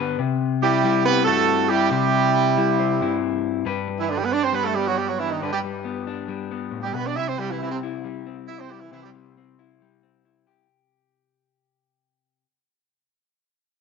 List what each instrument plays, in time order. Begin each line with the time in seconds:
Already playing: clean electric guitar G2 D3 B3 D4 B4
0.19 clean electric guitar C3
0.62 horn section G3 E4 G4, clean electric guitar E4
0.84 clean electric guitar G3 E4
1.05 horn section B3 G4 B4, clean electric guitar C4
1.25 clean electric guitar G2 E4, horn section A3 F#4 A4
1.69 horn section G3 E4 G4, clean electric guitar E4
1.91 clean electric guitar C3, horn section G3 E4 G4
2.36 muted clean electric guitar stroke
2.57 clean electric guitar G3 E4
2.79 clean electric guitar C4
3.01 clean electric guitar G2 E4
3.66 clean electric guitar G2 B4
3.88 muted clean electric guitar stroke
4.00 horn section E3 E4
4.10 horn section D3 D4, muted clean electric guitar stroke
4.18 horn section G3 G4
4.25 horn section B3 B4
4.32 horn section D4 D5, clean electric guitar D4
4.43 horn section C4 C5
4.52 clean electric guitar G3, horn section B3 B4
4.65 horn section A3 A4
4.75 horn section G3 G4, clean electric guitar B3
4.87 horn section F#3 F#4
4.97 horn section G3 G4, muted clean electric guitar stroke
5.07 horn section F#3 F#4
5.18 horn section E3 E4, clean electric guitar D4
5.31 horn section D#3 D#4
5.42 clean electric guitar G2 B4, horn section D3 D4
5.53 horn section G3 G4
5.64 clean electric guitar G3
5.85 clean electric guitar B3
6.07 clean electric guitar D4
6.28 clean electric guitar G3
6.51 clean electric guitar B3
6.71 clean electric guitar A2
6.83 horn section G3 G4
6.93 clean electric guitar B2, horn section B3 B4
7.06 horn section D4 D5
7.16 clean electric guitar C3, horn section E4 E5, muted clean electric guitar stroke
7.28 horn section C4 C5
7.38 clean electric guitar G3, horn section G3 G4
7.51 horn section E3 E4
7.60 horn section E3 E4, clean electric guitar C4
7.72 horn section C3 C4
7.83 clean electric guitar E4
8.04 clean electric guitar G3
8.26 clean electric guitar C4
8.47 horn section E4 E5, clean electric guitar E4
8.59 horn section C4 C5
8.71 horn section G3 G4, clean electric guitar E4
8.81 horn section E3 E4
8.91 clean electric guitar C3 C4, horn section E3 E4
9.03 horn section G3 G4
9.15 clean electric guitar G3
9.37 clean electric guitar C4
9.59 clean electric guitar E4
9.82 clean electric guitar G3
10.03 clean electric guitar C4
10.25 clean electric guitar E4
10.47 clean electric guitar G4